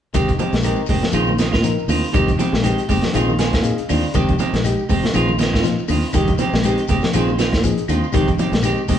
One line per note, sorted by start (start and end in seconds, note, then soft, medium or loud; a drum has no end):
0.13 0.36 F1 medium
0.13 0.30 D#3 medium
0.13 0.28 D#3 medium
0.13 0.32 G#3 medium
0.13 0.31 G#3 medium
0.13 0.31 C4 medium
0.13 0.33 D#4 medium
0.13 0.33 G4 medium
0.13 0.31 G4 medium
0.13 kick medium
0.13 closed hi-hat medium
0.13 low conga medium
0.13 claves medium
0.13 shekere medium
0.28 kick medium
0.28 closed hi-hat soft
0.28 low conga medium
0.28 shekere soft
0.38 0.55 D#3 soft
0.38 0.47 F3 medium
0.38 0.55 G#3 soft
0.38 0.56 C4 medium
0.38 0.56 G4 medium
0.38 closed hi-hat soft
0.38 high conga medium
0.38 shekere medium
0.52 0.75 A#1 medium
0.52 0.67 G#3 medium
0.52 snare medium
0.52 closed hi-hat soft
0.52 shekere soft
0.62 0.80 D#3 soft
0.62 0.82 G#3 medium
0.62 0.80 G#3 soft
0.62 0.81 C4 medium
0.62 0.83 D#4 medium
0.62 0.81 G4 medium
0.62 0.83 A#4 medium
0.62 closed hi-hat medium
0.62 claves medium
0.62 shekere medium
0.76 shekere soft
0.86 1.01 F1 medium
0.86 1.05 D#3 medium
0.86 0.97 G#3 medium
0.86 1.06 G#3 medium
0.86 kick medium
0.86 open hi-hat medium
0.86 shekere medium
0.90 1.06 C4 medium
0.90 1.06 G4 medium
0.90 high conga medium
1.01 1.17 F3 medium
1.01 snare medium
1.01 shekere soft
1.12 1.55 A#1 medium
1.12 1.30 D#3 medium
1.12 1.30 G#3 medium
1.12 1.32 C4 medium
1.12 1.30 C4 medium
1.12 1.32 D#4 medium
1.12 1.30 F4 medium
1.12 1.32 G#4 medium
1.12 closed hi-hat medium
1.12 claves medium
1.12 shekere medium
1.27 1.42 D#3 medium
1.27 high conga medium
1.27 shekere soft
1.38 1.53 D#3 medium
1.38 1.52 G#3 medium
1.38 1.52 C4 medium
1.38 1.51 F4 medium
1.38 snare medium
1.38 closed hi-hat soft
1.38 high conga medium
1.38 shekere medium
1.52 1.75 A#2 medium
1.52 1.67 G#3 soft
1.52 1.67 C4 soft
1.52 1.67 F4 soft
1.52 kick medium
1.52 snare medium
1.52 claves medium
1.52 shekere soft
1.63 1.78 F3 medium
1.63 1.82 C4 medium
1.63 1.82 D#4 medium
1.63 1.83 A#4 medium
1.63 closed hi-hat medium
1.63 shekere medium
1.78 shekere soft
1.88 2.01 D#2 medium
1.88 2.03 D3 medium
1.88 2.05 D#3 medium
1.88 2.05 G#3 medium
1.88 2.06 C4 medium
1.88 2.06 F4 medium
1.88 open hi-hat medium
1.88 high conga medium
1.88 claves medium
1.88 shekere medium
2.04 shekere soft
2.13 2.36 F1 medium
2.13 2.30 D#3 medium
2.13 2.28 D#3 medium
2.13 2.32 G#3 medium
2.13 2.30 G#3 medium
2.13 2.30 C4 medium
2.13 2.33 D#4 medium
2.13 2.30 G4 medium
2.13 2.33 G4 medium
2.13 kick medium
2.13 closed hi-hat medium
2.13 low conga medium
2.13 claves medium
2.13 shekere medium
2.28 kick medium
2.28 closed hi-hat soft
2.28 low conga medium
2.28 shekere soft
2.38 2.55 D#3 medium
2.38 2.47 F3 medium
2.38 2.55 G#3 medium
2.38 2.55 C4 medium
2.38 2.55 G4 medium
2.38 closed hi-hat soft
2.38 high conga medium
2.38 shekere medium
2.53 2.75 A#1 medium
2.53 2.66 G#3 medium
2.53 snare medium
2.53 shekere soft
2.63 2.80 D#3 medium
2.63 2.82 G#3 medium
2.63 2.80 G#3 medium
2.63 2.80 C4 medium
2.63 2.82 D#4 medium
2.63 2.80 G4 medium
2.63 2.83 G4 medium
2.63 closed hi-hat medium
2.63 claves medium
2.63 shekere medium
2.78 closed hi-hat soft
2.78 shekere soft
2.88 3.02 F1 medium
2.88 3.05 D#3 medium
2.88 3.05 G#3 medium
2.88 2.97 G#3 medium
2.88 3.05 C4 medium
2.88 3.06 G4 medium
2.88 kick medium
2.88 open hi-hat medium
2.88 high conga medium
2.88 shekere medium
3.03 3.17 F3 medium
3.03 snare medium
3.03 low conga medium
3.03 shekere soft
3.13 3.55 A#1 medium
3.13 3.31 D#3 medium
3.13 3.32 C4 medium
3.13 3.31 C4 medium
3.13 3.32 D#4 medium
3.13 3.31 F4 medium
3.13 3.33 G#4 medium
3.13 muted clean electric guitar stroke medium
3.13 closed hi-hat medium
3.13 high conga medium
3.13 claves medium
3.13 shekere medium
3.28 3.42 D#3 medium
3.28 high conga medium
3.28 shekere soft
3.39 3.53 D#3 medium
3.39 3.52 G#3 medium
3.39 3.52 C4 medium
3.39 3.54 F4 medium
3.39 3.63 G#5 medium
3.39 snare medium
3.39 closed hi-hat soft
3.39 high conga medium
3.39 shekere medium
3.53 3.75 A#2 medium
3.53 3.67 G#3 soft
3.53 3.67 C4 soft
3.53 kick medium
3.53 snare medium
3.53 closed hi-hat soft
3.53 claves medium
3.53 shekere soft
3.63 3.82 C4 medium
3.63 3.82 D#4 medium
3.63 3.83 G#4 medium
3.63 3.87 F5 medium
3.63 muted clean electric guitar stroke medium
3.63 closed hi-hat medium
3.63 shekere medium
3.78 closed hi-hat soft
3.78 shekere soft
3.89 4.02 D#2 medium
3.89 4.03 D3 medium
3.89 4.05 D#3 medium
3.89 4.06 G#3 medium
3.89 4.06 C4 medium
3.89 4.06 F4 medium
3.89 4.13 D5 medium
3.89 open hi-hat medium
3.89 high conga medium
3.89 claves medium
3.89 shekere medium
4.03 shekere soft
4.14 4.36 F1 medium
4.14 4.31 D#3 medium
4.14 4.28 D#3 medium
4.14 4.33 G#3 medium
4.14 4.31 G#3 medium
4.14 4.31 C4 medium
4.14 4.33 D#4 medium
4.14 4.31 G4 medium
4.14 4.33 G4 medium
4.14 kick medium
4.14 closed hi-hat medium
4.14 low conga medium
4.14 claves medium
4.14 shekere medium
4.28 kick medium
4.28 closed hi-hat soft
4.28 low conga medium
4.28 shekere soft
4.39 4.56 D#3 medium
4.39 4.56 G#3 medium
4.39 4.56 C4 medium
4.39 4.56 G4 medium
4.39 muted clean electric guitar stroke medium
4.39 closed hi-hat soft
4.39 high conga medium
4.39 shekere medium
4.53 4.75 A#1 medium
4.53 4.67 G#3 medium
4.53 snare medium
4.53 closed hi-hat soft
4.53 shekere soft
4.64 4.83 G#3 medium
4.64 4.83 D#4 medium
4.64 4.84 G4 medium
4.64 closed hi-hat medium
4.64 claves medium
4.64 shekere medium
4.79 shekere soft
4.89 5.02 F1 medium
4.89 5.05 D#3 medium
4.89 5.06 G#3 medium
4.89 4.97 G#3 medium
4.89 5.06 C4 medium
4.89 5.06 G4 medium
4.89 kick medium
4.89 open hi-hat medium
4.89 high conga medium
4.89 shekere medium
5.03 5.17 F3 medium
5.03 snare medium
5.03 low conga medium
5.03 shekere soft
5.13 5.56 A#1 medium
5.13 5.31 D#3 medium
5.13 5.31 G#3 medium
5.13 5.32 C4 medium
5.13 5.31 C4 medium
5.13 5.33 D#4 medium
5.13 5.31 F4 medium
5.13 5.33 G#4 medium
5.13 closed hi-hat medium
5.13 claves medium
5.13 shekere medium
5.28 5.42 D#3 medium
5.28 high conga medium
5.28 shekere soft
5.39 5.53 D#3 medium
5.39 5.53 G#3 medium
5.39 5.53 C4 medium
5.39 5.52 F4 medium
5.39 snare medium
5.39 closed hi-hat soft
5.39 high conga medium
5.39 shekere medium
5.53 5.75 A#2 medium
5.53 5.68 G#3 soft
5.53 5.68 C4 soft
5.53 5.67 F4 soft
5.53 kick medium
5.53 snare medium
5.53 claves medium
5.53 shekere soft
5.63 5.77 F3 medium
5.63 5.82 C4 medium
5.63 5.82 D#4 medium
5.63 5.83 F4 medium
5.63 snare soft
5.63 closed hi-hat medium
5.63 shekere medium
5.79 shekere soft
5.88 6.02 D#2 medium
5.88 6.02 D3 medium
5.88 6.06 D#3 medium
5.88 6.06 G#3 medium
5.88 6.06 C4 medium
5.88 6.06 F4 medium
5.88 open hi-hat medium
5.88 high conga medium
5.88 claves medium
5.88 shekere medium
6.03 shekere soft
6.13 6.36 F1 medium
6.13 6.28 D#3 medium
6.13 6.30 D#3 medium
6.13 6.32 G#3 medium
6.13 6.31 G#3 medium
6.13 6.33 D#4 medium
6.13 6.33 G4 medium
6.13 6.31 G4 medium
6.13 muted clean electric guitar stroke medium
6.13 kick medium
6.13 closed hi-hat medium
6.13 low conga medium
6.13 claves medium
6.13 shekere medium
6.27 kick medium
6.27 closed hi-hat soft
6.27 low conga medium
6.27 shekere soft
6.38 6.56 D#3 medium
6.38 6.47 F3 medium
6.38 6.56 G#3 medium
6.38 6.56 C4 medium
6.38 6.56 G4 medium
6.38 closed hi-hat soft
6.38 high conga medium
6.38 shekere medium
6.53 6.75 A#1 medium
6.53 6.67 G#3 medium
6.53 snare medium
6.53 shekere soft
6.63 6.81 D#3 medium
6.63 6.82 G#3 medium
6.63 6.81 G#3 medium
6.63 6.81 C4 medium
6.63 6.83 D#4 medium
6.63 6.81 G4 medium
6.63 6.83 G4 medium
6.63 closed hi-hat medium
6.63 claves medium
6.63 shekere medium
6.78 closed hi-hat soft
6.78 shekere soft
6.88 7.01 F1 medium
6.88 7.05 D#3 medium
6.88 7.05 G#3 medium
6.88 6.97 G#3 medium
6.88 7.06 C4 medium
6.88 7.06 G4 medium
6.88 kick medium
6.88 closed hi-hat soft
6.88 high conga medium
6.88 shekere medium
7.01 7.17 F3 medium
7.01 snare medium
7.01 shekere soft
7.13 7.54 A#1 medium
7.13 7.30 D#3 medium
7.13 7.30 G#3 medium
7.13 7.32 C4 medium
7.13 7.30 C4 medium
7.13 7.33 D#4 medium
7.13 7.30 F4 medium
7.13 7.33 G#4 medium
7.13 closed hi-hat medium
7.13 claves medium
7.13 shekere medium
7.28 muted clean electric guitar stroke medium
7.28 high conga medium
7.28 shekere soft
7.38 7.55 D#3 medium
7.38 7.55 G#3 medium
7.38 7.55 C4 medium
7.38 7.55 F4 medium
7.38 snare medium
7.38 closed hi-hat soft
7.38 high conga medium
7.38 shekere medium
7.52 7.75 A#2 medium
7.52 kick medium
7.52 snare medium
7.52 closed hi-hat soft
7.52 claves medium
7.52 shekere soft
7.63 7.78 F3 medium
7.63 7.82 C4 medium
7.63 7.82 D#4 medium
7.63 7.83 G#4 medium
7.63 kick medium
7.63 closed hi-hat medium
7.63 shekere medium
7.78 closed hi-hat soft
7.78 shekere soft
7.88 8.01 D#2 medium
7.88 8.03 D3 medium
7.88 8.05 D#3 medium
7.88 8.05 G#3 medium
7.88 8.06 C4 medium
7.88 8.06 F4 medium
7.88 closed hi-hat soft
7.88 high conga medium
7.88 claves medium
7.88 shekere medium
8.03 shekere soft
8.13 8.36 F1 medium
8.13 8.30 D#3 medium
8.13 8.28 D#3 medium
8.13 8.32 G#3 medium
8.13 8.30 G#3 medium
8.13 8.30 C4 medium
8.13 8.32 D#4 medium
8.13 8.32 G4 medium
8.13 8.30 G4 medium
8.13 kick medium
8.13 closed hi-hat medium
8.13 low conga medium
8.13 claves medium
8.13 shekere medium
8.28 kick medium
8.28 closed hi-hat soft
8.28 low conga medium
8.28 shekere soft
8.39 8.55 D#3 medium
8.39 8.47 F3 medium
8.39 8.56 G#3 medium
8.39 8.56 C4 medium
8.39 8.56 G4 medium
8.39 closed hi-hat soft
8.39 high conga medium
8.39 shekere medium
8.52 8.74 A#1 medium
8.52 8.66 G#3 medium
8.52 snare medium
8.52 closed hi-hat soft
8.52 shekere soft
8.63 8.80 D#3 medium
8.63 8.82 G#3 medium
8.63 8.80 G#3 medium
8.63 8.80 C4 medium
8.63 8.82 D#4 medium
8.63 8.82 G4 medium
8.63 8.81 G4 medium
8.63 closed hi-hat medium
8.63 claves medium
8.63 shekere medium
8.77 shekere soft
8.88 8.99 F1 medium
8.88 8.99 D#3 medium
8.88 8.99 G#3 medium
8.88 8.97 G#3 medium
8.88 8.99 C4 medium
8.88 8.99 G4 medium
8.88 kick medium
8.88 open hi-hat medium
8.88 high conga medium
8.88 shekere medium